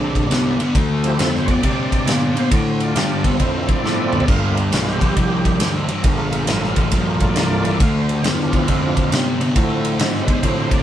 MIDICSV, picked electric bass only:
0, 0, Header, 1, 3, 480
1, 0, Start_track
1, 0, Key_signature, -1, "minor"
1, 0, Tempo, 440205
1, 822, Time_signature, 4, 2, 24, 8
1, 11808, End_track
2, 0, Start_track
2, 0, Title_t, "Picked electric bass"
2, 0, Program_c, 0, 34
2, 0, Note_on_c, 0, 34, 85
2, 322, Note_off_c, 0, 34, 0
2, 342, Note_on_c, 0, 36, 88
2, 633, Note_off_c, 0, 36, 0
2, 817, Note_on_c, 0, 38, 85
2, 1288, Note_off_c, 0, 38, 0
2, 1302, Note_on_c, 0, 41, 99
2, 1771, Note_off_c, 0, 41, 0
2, 1783, Note_on_c, 0, 48, 85
2, 2253, Note_off_c, 0, 48, 0
2, 2262, Note_on_c, 0, 46, 81
2, 2733, Note_off_c, 0, 46, 0
2, 2741, Note_on_c, 0, 45, 86
2, 3213, Note_off_c, 0, 45, 0
2, 3223, Note_on_c, 0, 43, 100
2, 3695, Note_off_c, 0, 43, 0
2, 3706, Note_on_c, 0, 41, 84
2, 4001, Note_off_c, 0, 41, 0
2, 4183, Note_on_c, 0, 45, 78
2, 4656, Note_off_c, 0, 45, 0
2, 4666, Note_on_c, 0, 43, 87
2, 5138, Note_off_c, 0, 43, 0
2, 5154, Note_on_c, 0, 35, 101
2, 5622, Note_off_c, 0, 35, 0
2, 5632, Note_on_c, 0, 36, 78
2, 6101, Note_off_c, 0, 36, 0
2, 6117, Note_on_c, 0, 38, 79
2, 6408, Note_off_c, 0, 38, 0
2, 6586, Note_on_c, 0, 34, 91
2, 7057, Note_off_c, 0, 34, 0
2, 7074, Note_on_c, 0, 33, 100
2, 7536, Note_off_c, 0, 33, 0
2, 7543, Note_on_c, 0, 34, 89
2, 8014, Note_off_c, 0, 34, 0
2, 8029, Note_on_c, 0, 36, 81
2, 8497, Note_off_c, 0, 36, 0
2, 8508, Note_on_c, 0, 38, 92
2, 8975, Note_off_c, 0, 38, 0
2, 8987, Note_on_c, 0, 40, 105
2, 9454, Note_off_c, 0, 40, 0
2, 9470, Note_on_c, 0, 41, 82
2, 9934, Note_off_c, 0, 41, 0
2, 9949, Note_on_c, 0, 48, 85
2, 10412, Note_off_c, 0, 48, 0
2, 10420, Note_on_c, 0, 45, 92
2, 10886, Note_off_c, 0, 45, 0
2, 10896, Note_on_c, 0, 44, 100
2, 11363, Note_off_c, 0, 44, 0
2, 11376, Note_on_c, 0, 45, 85
2, 11808, Note_off_c, 0, 45, 0
2, 11808, End_track
3, 0, Start_track
3, 0, Title_t, "Muted picked electric bass strokes"
3, 655, Note_on_c, 9, 29, 42
3, 764, Note_off_c, 9, 29, 0
3, 4021, Note_on_c, 9, 29, 39
3, 4130, Note_off_c, 9, 29, 0
3, 6428, Note_on_c, 9, 29, 42
3, 6537, Note_off_c, 9, 29, 0
3, 11808, End_track
0, 0, End_of_file